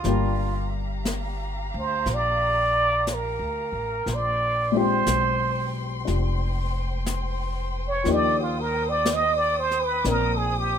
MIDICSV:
0, 0, Header, 1, 6, 480
1, 0, Start_track
1, 0, Key_signature, -3, "major"
1, 0, Tempo, 1000000
1, 24, Time_signature, 4, 2, 24, 8
1, 5176, End_track
2, 0, Start_track
2, 0, Title_t, "String section"
2, 0, Program_c, 0, 48
2, 26, Note_on_c, 0, 77, 64
2, 29, Note_on_c, 0, 82, 75
2, 30, Note_on_c, 0, 67, 64
2, 1933, Note_off_c, 0, 77, 0
2, 1934, Note_off_c, 0, 82, 0
2, 1935, Note_off_c, 0, 67, 0
2, 1964, Note_on_c, 0, 84, 78
2, 1966, Note_on_c, 0, 79, 62
2, 1968, Note_on_c, 0, 72, 63
2, 3855, Note_off_c, 0, 84, 0
2, 3865, Note_on_c, 0, 87, 82
2, 5176, Note_off_c, 0, 72, 0
2, 5176, Note_off_c, 0, 79, 0
2, 5176, Note_off_c, 0, 87, 0
2, 5176, End_track
3, 0, Start_track
3, 0, Title_t, "Muted trumpet"
3, 0, Program_c, 1, 59
3, 0, Note_on_c, 1, 65, 63
3, 342, Note_off_c, 1, 65, 0
3, 859, Note_on_c, 1, 72, 81
3, 1028, Note_on_c, 1, 74, 98
3, 1035, Note_off_c, 1, 72, 0
3, 1506, Note_on_c, 1, 70, 68
3, 1513, Note_off_c, 1, 74, 0
3, 1988, Note_on_c, 1, 74, 90
3, 1995, Note_off_c, 1, 70, 0
3, 2292, Note_on_c, 1, 72, 88
3, 2299, Note_off_c, 1, 74, 0
3, 2762, Note_off_c, 1, 72, 0
3, 3783, Note_on_c, 1, 73, 84
3, 3903, Note_on_c, 1, 74, 95
3, 3910, Note_off_c, 1, 73, 0
3, 4040, Note_on_c, 1, 65, 73
3, 4048, Note_off_c, 1, 74, 0
3, 4134, Note_on_c, 1, 70, 80
3, 4141, Note_off_c, 1, 65, 0
3, 4267, Note_on_c, 1, 74, 85
3, 4274, Note_off_c, 1, 70, 0
3, 4387, Note_on_c, 1, 75, 94
3, 4394, Note_off_c, 1, 74, 0
3, 4494, Note_on_c, 1, 74, 84
3, 4502, Note_off_c, 1, 75, 0
3, 4605, Note_on_c, 1, 72, 92
3, 4612, Note_off_c, 1, 74, 0
3, 4723, Note_on_c, 1, 71, 83
3, 4731, Note_off_c, 1, 72, 0
3, 4842, Note_on_c, 1, 70, 74
3, 4850, Note_off_c, 1, 71, 0
3, 4978, Note_on_c, 1, 68, 75
3, 4985, Note_off_c, 1, 70, 0
3, 5076, Note_on_c, 1, 67, 86
3, 5084, Note_off_c, 1, 68, 0
3, 5176, Note_off_c, 1, 67, 0
3, 5176, End_track
4, 0, Start_track
4, 0, Title_t, "Grand piano"
4, 0, Program_c, 2, 0
4, 0, Control_c, 2, 64, 127
4, 24, Note_on_c, 2, 55, 55
4, 30, Note_on_c, 2, 62, 47
4, 31, Control_c, 2, 64, 0
4, 31, Note_on_c, 2, 58, 49
4, 33, Note_on_c, 2, 65, 49
4, 37, Note_on_c, 2, 67, 60
4, 103, Control_c, 2, 64, 127
4, 1951, Note_off_c, 2, 55, 0
4, 1954, Note_off_c, 2, 62, 0
4, 1955, Note_off_c, 2, 58, 0
4, 1955, Note_off_c, 2, 65, 0
4, 1957, Note_off_c, 2, 67, 0
4, 1958, Control_c, 2, 64, 0
4, 2054, Control_c, 2, 64, 127
4, 2265, Note_on_c, 2, 56, 59
4, 2270, Note_on_c, 2, 60, 54
4, 2280, Note_on_c, 2, 62, 50
4, 2284, Note_on_c, 2, 65, 54
4, 2289, Note_on_c, 2, 67, 70
4, 2897, Note_off_c, 2, 62, 0
4, 2901, Note_off_c, 2, 65, 0
4, 2904, Note_on_c, 2, 62, 44
4, 2908, Note_on_c, 2, 65, 39
4, 2910, Note_off_c, 2, 67, 0
4, 2917, Note_on_c, 2, 67, 46
4, 3859, Note_on_c, 2, 53, 58
4, 3863, Note_off_c, 2, 56, 0
4, 3864, Note_off_c, 2, 62, 0
4, 3865, Note_off_c, 2, 60, 0
4, 3866, Note_off_c, 2, 65, 0
4, 3868, Note_on_c, 2, 58, 54
4, 3871, Note_off_c, 2, 67, 0
4, 3872, Control_c, 2, 64, 0
4, 3879, Note_on_c, 2, 62, 54
4, 3879, Note_on_c, 2, 63, 50
4, 3887, Note_on_c, 2, 67, 61
4, 3967, Control_c, 2, 64, 127
4, 4812, Note_off_c, 2, 58, 0
4, 4819, Note_on_c, 2, 58, 42
4, 4822, Note_off_c, 2, 62, 0
4, 4827, Note_on_c, 2, 60, 42
4, 4829, Note_on_c, 2, 62, 52
4, 5176, Note_off_c, 2, 53, 0
4, 5176, Note_off_c, 2, 58, 0
4, 5176, Note_off_c, 2, 60, 0
4, 5176, Note_off_c, 2, 62, 0
4, 5176, Note_off_c, 2, 63, 0
4, 5176, Note_off_c, 2, 67, 0
4, 5176, End_track
5, 0, Start_track
5, 0, Title_t, "Upright bass"
5, 0, Program_c, 3, 32
5, 23, Note_on_c, 3, 31, 77
5, 812, Note_off_c, 3, 31, 0
5, 836, Note_on_c, 3, 38, 69
5, 980, Note_off_c, 3, 38, 0
5, 988, Note_on_c, 3, 34, 81
5, 1611, Note_off_c, 3, 34, 0
5, 1629, Note_on_c, 3, 38, 64
5, 1779, Note_off_c, 3, 38, 0
5, 1787, Note_on_c, 3, 33, 62
5, 1938, Note_off_c, 3, 33, 0
5, 1950, Note_on_c, 3, 34, 74
5, 2411, Note_off_c, 3, 34, 0
5, 2433, Note_on_c, 3, 35, 69
5, 2891, Note_off_c, 3, 35, 0
5, 2918, Note_on_c, 3, 29, 74
5, 3852, Note_off_c, 3, 29, 0
5, 3867, Note_on_c, 3, 39, 81
5, 4803, Note_off_c, 3, 39, 0
5, 4822, Note_on_c, 3, 34, 81
5, 5176, Note_off_c, 3, 34, 0
5, 5176, End_track
6, 0, Start_track
6, 0, Title_t, "Drums"
6, 18, Note_on_c, 9, 25, 37
6, 18, Note_on_c, 9, 38, 31
6, 66, Note_off_c, 9, 38, 0
6, 505, Note_off_c, 9, 25, 0
6, 505, Note_on_c, 9, 25, 38
6, 505, Note_on_c, 9, 38, 46
6, 505, Note_on_c, 9, 44, 50
6, 553, Note_off_c, 9, 38, 0
6, 553, Note_off_c, 9, 44, 0
6, 988, Note_off_c, 9, 25, 0
6, 988, Note_on_c, 9, 25, 38
6, 988, Note_on_c, 9, 38, 31
6, 1036, Note_off_c, 9, 38, 0
6, 1474, Note_off_c, 9, 25, 0
6, 1474, Note_on_c, 9, 25, 37
6, 1474, Note_on_c, 9, 38, 46
6, 1474, Note_on_c, 9, 44, 56
6, 1522, Note_off_c, 9, 38, 0
6, 1522, Note_off_c, 9, 44, 0
6, 1953, Note_off_c, 9, 25, 0
6, 1953, Note_on_c, 9, 25, 40
6, 1953, Note_on_c, 9, 38, 35
6, 2001, Note_off_c, 9, 38, 0
6, 2431, Note_off_c, 9, 25, 0
6, 2431, Note_on_c, 9, 25, 33
6, 2431, Note_on_c, 9, 38, 49
6, 2431, Note_on_c, 9, 44, 57
6, 2479, Note_off_c, 9, 38, 0
6, 2479, Note_off_c, 9, 44, 0
6, 2915, Note_off_c, 9, 25, 0
6, 2915, Note_on_c, 9, 25, 36
6, 2915, Note_on_c, 9, 38, 34
6, 2963, Note_off_c, 9, 38, 0
6, 3390, Note_off_c, 9, 25, 0
6, 3390, Note_on_c, 9, 25, 36
6, 3390, Note_on_c, 9, 38, 51
6, 3390, Note_on_c, 9, 44, 59
6, 3438, Note_off_c, 9, 38, 0
6, 3438, Note_off_c, 9, 44, 0
6, 3864, Note_off_c, 9, 25, 0
6, 3864, Note_on_c, 9, 25, 43
6, 3864, Note_on_c, 9, 38, 33
6, 3912, Note_off_c, 9, 38, 0
6, 4346, Note_off_c, 9, 25, 0
6, 4346, Note_on_c, 9, 25, 36
6, 4346, Note_on_c, 9, 38, 51
6, 4346, Note_on_c, 9, 44, 58
6, 4394, Note_off_c, 9, 38, 0
6, 4394, Note_off_c, 9, 44, 0
6, 4661, Note_on_c, 9, 38, 29
6, 4709, Note_off_c, 9, 38, 0
6, 4821, Note_off_c, 9, 25, 0
6, 4821, Note_on_c, 9, 25, 41
6, 4821, Note_on_c, 9, 38, 33
6, 4869, Note_off_c, 9, 38, 0
6, 5176, Note_off_c, 9, 25, 0
6, 5176, End_track
0, 0, End_of_file